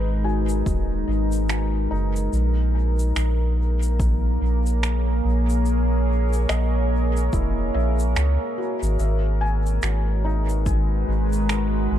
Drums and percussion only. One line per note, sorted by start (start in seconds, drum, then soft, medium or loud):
0.49 shaker medium
0.66 kick loud
0.66 shaker medium
1.32 shaker medium
1.49 finger snap medium
1.49 shaker medium
2.16 shaker medium
2.33 shaker medium
2.99 shaker medium
3.16 finger snap medium
3.16 shaker medium
3.82 shaker medium
4.00 kick loud
4.00 shaker medium
4.66 shaker medium
4.83 finger snap medium
4.83 shaker medium
5.49 shaker medium
5.66 shaker medium
6.33 shaker medium
6.49 finger snap medium
6.49 shaker medium
7.17 shaker medium
7.33 kick loud
7.33 shaker medium
7.99 shaker medium
8.16 finger snap medium
8.16 shaker medium
8.83 shaker medium
8.99 shaker medium
9.66 shaker medium
9.82 finger snap medium
9.82 shaker medium
10.49 shaker medium
10.66 kick loud
10.66 shaker medium
11.33 shaker medium
11.49 finger snap medium
11.49 shaker medium